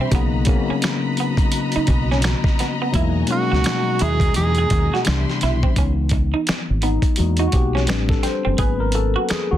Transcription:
Already playing: B2 C3 E3 G3 D4 G4 E5 B5 C6
0.01 C4
0.11 B1 C#3 F#3 A#3 B3 D#4 F#4 D#5 A#5, kick, closed hi-hat
0.15 B3
0.45 C#3 F#3 A#3 B3 C4, kick, closed hi-hat
0.49 muted clean electric guitar stroke
0.55 C#4
0.70 C#4, muted fingered electric bass stroke
0.82 finger snap, snare, closed hi-hat
1.17 B3, closed hi-hat
1.37 kick, closed hi-hat
1.52 closed hi-hat
1.72 D#4, closed hi-hat
1.76 muted fingered electric bass stroke
1.87 B1, muted clean electric guitar stroke, kick, closed hi-hat
2.11 C#4, snare
2.22 finger snap, muted clean electric guitar stroke, snare, closed hi-hat
2.44 kick, snare
2.59 B3, snare, closed hi-hat
2.82 B3
2.92 E2 B2 F#3 G#3 A#3 D#4 E4 F#4 G#5, kick, closed hi-hat
3.27 B2 F#3 G3 A#3 C#4, muted clean electric guitar stroke, closed hi-hat
3.32 G#3 F#4
3.52 C#2 F#4, snare
3.64 finger snap, snare, closed hi-hat
3.99 D#2 E4 G#4, closed hi-hat
4.20 kick, closed hi-hat
4.34 E2 G#4, closed hi-hat
4.55 G#4, closed hi-hat
4.70 D#2, muted clean electric guitar stroke, kick, closed hi-hat
4.94 F#4, snare
5.04 C2 C3 E3 G3 B3 D4 G4 E5 B5 C6, finger snap, muted clean electric guitar stroke, snare, closed hi-hat
5.30 snare
5.41 B1 E4, snare, closed hi-hat
5.63 C4, kick
5.76 C#2 E3 B3 C#4 D#4, kick, closed hi-hat
6.09 muted clean electric guitar stroke, kick, closed hi-hat
6.34 D#4
6.47 finger snap, muted fingered electric bass stroke, snare, closed hi-hat
6.70 G#1
6.82 B3 D#4, closed hi-hat
7.02 kick, closed hi-hat
7.16 E2 G#3 A#3 D#4 F#4, closed hi-hat
7.37 D#4 F#4, closed hi-hat
7.47 F#4
7.52 B1 G4, muted clean electric guitar stroke, kick, closed hi-hat
7.75 C#4, snare
7.87 A1 G3 C4 D4 B4, finger snap, muted clean electric guitar stroke, snare, closed hi-hat
8.09 A4, kick, snare
8.23 C4 C5, snare, closed hi-hat
8.45 F#1 C4
8.58 G#1 F#3 A#3 B3 C#4 G#4 B4, kick, closed hi-hat
8.80 A#4
8.92 A4, muted clean electric guitar stroke, closed hi-hat
9.16 F#4
9.29 G#4, finger snap, muted fingered electric bass stroke, snare, closed hi-hat
9.51 D#2 F#4

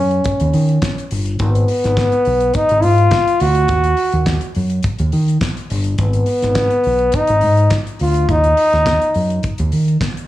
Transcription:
Already playing: F#2 C#4
0.11 closed hi-hat
0.24 kick, closed hi-hat
0.40 D#2, closed hi-hat
0.53 D#3, open hi-hat
0.69 closed hi-hat
0.82 kick, snare, clap, closed hi-hat
0.98 closed hi-hat
1.11 G1, open hi-hat
1.26 closed hi-hat
1.39 G#1 B3, kick, closed hi-hat
1.55 closed hi-hat
1.68 open hi-hat
1.84 G#1, snare, closed hi-hat
1.97 kick, snare, clap, closed hi-hat
2.12 closed hi-hat
2.25 B1, open hi-hat
2.40 closed hi-hat
2.54 D#4, kick, closed hi-hat
2.69 G#1, closed hi-hat
2.82 G#2 F4, open hi-hat
2.98 closed hi-hat
3.11 kick, snare, clap, closed hi-hat
3.28 closed hi-hat
3.40 D2 F#4, open hi-hat
3.55 closed hi-hat
3.68 D#2, kick, closed hi-hat
3.84 closed hi-hat
3.97 open hi-hat
4.12 D#2, closed hi-hat
4.26 kick, snare, clap, closed hi-hat
4.41 closed hi-hat
4.55 F#2, open hi-hat
4.70 closed hi-hat
4.83 kick, closed hi-hat
4.99 D#2, closed hi-hat
5.12 D#3, open hi-hat
5.28 closed hi-hat
5.41 kick, snare, clap, closed hi-hat
5.57 closed hi-hat
5.70 G1, open hi-hat
5.84 closed hi-hat
5.98 G#1 B3, kick, closed hi-hat
6.13 closed hi-hat
6.26 open hi-hat
6.42 G#1, snare, closed hi-hat
6.55 kick, snare, clap, closed hi-hat
6.70 closed hi-hat
6.84 B1, open hi-hat
6.99 closed hi-hat
7.12 D#4, kick, closed hi-hat
7.27 G#1, closed hi-hat
7.41 G#2, open hi-hat
7.57 closed hi-hat
7.70 kick, snare, clap, closed hi-hat
7.87 closed hi-hat
7.99 D2 F4, open hi-hat
8.14 closed hi-hat
8.29 D#2 D#4, kick, closed hi-hat
8.44 closed hi-hat
8.57 open hi-hat
8.73 D#2, snare, closed hi-hat
8.86 kick, snare, clap, closed hi-hat
9.02 closed hi-hat
9.14 F#2, open hi-hat
9.30 closed hi-hat
9.43 kick, closed hi-hat
9.58 D#2, closed hi-hat
9.72 D#3, open hi-hat
9.88 closed hi-hat
10.01 kick, snare, clap, closed hi-hat
10.17 closed hi-hat

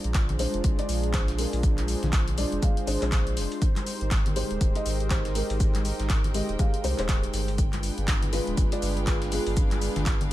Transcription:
Already playing: G#3 C4 D4 F4 G#4 C5 D5 A#5
0.04 A#1, closed hi-hat
0.14 kick, snare, clap, closed hi-hat, shaker
0.29 closed hi-hat, low conga
0.39 G#3 D4 C5, open hi-hat, high conga, shaker
0.54 F1, closed hi-hat
0.64 G#1, kick, closed hi-hat, shaker
0.78 G#3 D4 D5, closed hi-hat
0.89 A#1, open hi-hat, shaker
1.04 closed hi-hat
1.13 G#3 D4 C5, kick, snare, clap, closed hi-hat, shaker
1.28 snare, closed hi-hat
1.38 G#3 D4 A#4, open hi-hat, shaker
1.53 A#1, closed hi-hat
1.63 kick, closed hi-hat, shaker
1.78 clap, closed hi-hat, high conga
1.88 open hi-hat, shaker
2.03 A#1, snare, closed hi-hat, low conga
2.13 kick, snare, clap, closed hi-hat, shaker
2.28 closed hi-hat, low conga
2.37 G#3 D4 D5, open hi-hat, high conga, shaker
2.52 F1, closed hi-hat
2.62 G#3 D4 F5, kick, closed hi-hat, shaker
2.77 closed hi-hat
2.87 G#1 G#3 D4 C5, open hi-hat, shaker
3.01 A#1 G#3 D4 C5, clap, closed hi-hat
3.12 kick, snare, clap, closed hi-hat, shaker
3.27 closed hi-hat
3.37 F1, snare, open hi-hat, shaker
3.52 closed hi-hat
3.62 D#4 G4 A#4, kick, closed hi-hat, shaker
3.76 clap, closed hi-hat, high conga
3.86 open hi-hat, shaker
4.01 G#1, closed hi-hat
4.11 kick, snare, clap, closed hi-hat, shaker
4.26 closed hi-hat, low conga
4.36 G#3 G4 C5, open hi-hat, high conga, shaker
4.51 D#1 G5, closed hi-hat
4.61 D#1, kick, closed hi-hat, shaker
4.75 G#3 G4 D#5, closed hi-hat
4.86 G#1, open hi-hat, shaker
5.00 closed hi-hat
5.10 G#3 G4 C5, kick, snare, clap, closed hi-hat, shaker
5.25 snare, closed hi-hat
5.34 G#3 G4 A#4, open hi-hat, shaker
5.50 G#1, closed hi-hat
5.60 kick, closed hi-hat, shaker
5.75 clap, closed hi-hat, high conga
5.85 open hi-hat, shaker
6.00 G#1, snare, closed hi-hat
6.10 kick, snare, clap, closed hi-hat, shaker
6.24 closed hi-hat, low conga
6.34 G#3 G4 D#5, open hi-hat, high conga, shaker
6.49 D#1, closed hi-hat
6.59 G#3 G4 F5, kick, closed hi-hat, shaker
6.74 closed hi-hat
6.84 C2 G#3 G4 C5, open hi-hat, shaker
6.98 D#1 G#3 G4 C5, clap, closed hi-hat
7.09 kick, snare, clap, closed hi-hat, shaker
7.23 closed hi-hat
7.33 G1, snare, open hi-hat, shaker
7.48 closed hi-hat
7.58 B3 D4 F4 G#4 B4, kick, closed hi-hat, shaker
7.73 clap, closed hi-hat, high conga
7.83 open hi-hat, shaker
7.98 G1, closed hi-hat
8.08 kick, snare, clap, closed hi-hat, shaker
8.23 F5, closed hi-hat, low conga
8.32 G#3 F4 B4, open hi-hat, high conga, shaker
8.47 D1, closed hi-hat
8.57 F1, kick, closed hi-hat, shaker
8.72 G#3 F4 D5, closed hi-hat
8.82 G1, open hi-hat, shaker
8.97 closed hi-hat
9.07 G#3 F4 B4, kick, snare, clap, closed hi-hat, shaker
9.22 snare, closed hi-hat
9.31 G#3 F4 G#4, open hi-hat, shaker
9.47 G1, closed hi-hat
9.57 kick, closed hi-hat, shaker
9.71 clap, closed hi-hat, high conga
9.82 open hi-hat, shaker
9.96 G1, snare, closed hi-hat, low conga
10.06 kick, snare, clap, closed hi-hat, shaker
10.21 closed hi-hat, low conga

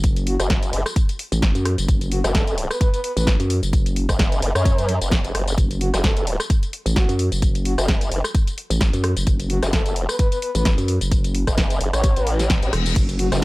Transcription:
Already playing: F#1
0.04 kick, closed hi-hat, tambourine
0.16 closed hi-hat, tambourine
0.27 F#4, open hi-hat
0.40 F#1 F#4, cross-stick, closed hi-hat, tambourine
0.50 kick, snare, closed hi-hat, tambourine
0.63 closed hi-hat, tambourine
0.73 F#1, open hi-hat
0.86 cross-stick, tambourine
0.96 kick, closed hi-hat, tambourine
1.09 closed hi-hat, tambourine
1.19 open hi-hat
1.32 A1, closed hi-hat, tambourine
1.42 kick, snare, closed hi-hat, tambourine
1.55 F#2, closed hi-hat, tambourine
1.65 cross-stick, open hi-hat
1.78 F#1, closed hi-hat, tambourine
1.88 F#1, kick, closed hi-hat, tambourine
2.01 closed hi-hat, tambourine
2.12 F#4, open hi-hat
2.24 F#1 F#4, cross-stick, snare, closed hi-hat, tambourine
2.35 A4, kick, snare, closed hi-hat, tambourine
2.47 A4, closed hi-hat, tambourine
2.58 open hi-hat
2.70 B4, cross-stick, tambourine
2.81 B4, kick, closed hi-hat, tambourine
2.94 B4, closed hi-hat, tambourine
3.04 B4, open hi-hat
3.17 A1 B4, closed hi-hat, tambourine
3.27 kick, snare, closed hi-hat, tambourine
3.40 F#2, closed hi-hat, tambourine
3.50 open hi-hat
3.63 F#1, closed hi-hat, tambourine
3.73 kick, closed hi-hat, tambourine
3.86 closed hi-hat, tambourine
3.96 open hi-hat
4.09 F#1, kick, cross-stick, closed hi-hat, tambourine
4.19 kick, snare, closed hi-hat, tambourine
4.32 closed hi-hat, tambourine
4.42 F#1, open hi-hat
4.55 F#2 C#5, cross-stick, tambourine
4.65 kick, closed hi-hat, tambourine
4.78 closed hi-hat, tambourine
4.89 open hi-hat
5.01 F#1, closed hi-hat, tambourine
5.12 kick, snare, closed hi-hat, tambourine
5.24 F#1, closed hi-hat, tambourine
5.35 F#1, cross-stick, open hi-hat
5.48 closed hi-hat, tambourine
5.58 F#1, kick, closed hi-hat, tambourine
5.71 closed hi-hat, tambourine
5.81 F#4, open hi-hat
5.93 F#1 F#4, cross-stick, snare, closed hi-hat, tambourine
6.04 A4, kick, snare, closed hi-hat, tambourine
6.16 A4, closed hi-hat, tambourine
6.27 open hi-hat
6.40 cross-stick, tambourine
6.50 kick, closed hi-hat, tambourine
6.63 closed hi-hat, tambourine
6.73 open hi-hat
6.86 A1, closed hi-hat, tambourine
6.96 F#4, kick, snare, closed hi-hat, tambourine
7.09 F#2, closed hi-hat, tambourine
7.19 open hi-hat
7.32 F#1, closed hi-hat, tambourine
7.42 kick, closed hi-hat, tambourine
7.55 closed hi-hat, tambourine
7.65 F#4, open hi-hat
7.78 F#1 F#4, cross-stick, closed hi-hat, tambourine
7.88 kick, snare, closed hi-hat, tambourine
8.01 closed hi-hat, tambourine
8.11 F#1, open hi-hat
8.24 cross-stick, tambourine
8.35 kick, closed hi-hat, tambourine
8.47 closed hi-hat, tambourine
8.58 open hi-hat
8.70 A1, closed hi-hat, tambourine
8.81 kick, snare, closed hi-hat, tambourine
8.93 F#2, closed hi-hat, tambourine
9.04 cross-stick, open hi-hat
9.16 F#1, closed hi-hat, tambourine
9.27 F#1, kick, closed hi-hat, tambourine
9.40 closed hi-hat, tambourine
9.50 F#4, open hi-hat
9.63 F#1 F#4, cross-stick, snare, closed hi-hat, tambourine
9.73 A4, kick, snare, closed hi-hat, tambourine
9.86 A4, closed hi-hat, tambourine
9.96 open hi-hat
10.09 B4, cross-stick, tambourine
10.19 B4, kick, closed hi-hat, tambourine
10.32 B4, closed hi-hat, tambourine
10.42 B4, open hi-hat
10.55 A1 B4, closed hi-hat, tambourine
10.65 kick, snare, closed hi-hat, tambourine
10.78 F#2, closed hi-hat, tambourine
10.88 open hi-hat
11.01 F#1, closed hi-hat, tambourine
11.12 kick, closed hi-hat, tambourine
11.24 closed hi-hat, tambourine
11.35 open hi-hat
11.47 F#1, kick, cross-stick, closed hi-hat, tambourine
11.58 kick, snare, closed hi-hat, tambourine
11.70 closed hi-hat, tambourine
11.81 F#1, open hi-hat
11.93 A1 C#5, cross-stick, closed hi-hat, tambourine
12.04 kick, closed hi-hat, tambourine, reverse cymbal
12.16 A1, closed hi-hat, tambourine
12.27 open hi-hat
12.39 snare, closed hi-hat, tambourine
12.50 kick, snare, closed hi-hat, tambourine
12.63 A1, closed hi-hat, tambourine
12.73 E1, cross-stick, open hi-hat
12.86 closed hi-hat, tambourine
12.96 F#1 C#3 F#3 C#4, kick, closed hi-hat, tambourine, crash
13.09 closed hi-hat, tambourine
13.19 F#4, open hi-hat
13.32 F#1 F#4, cross-stick, snare, closed hi-hat, tambourine

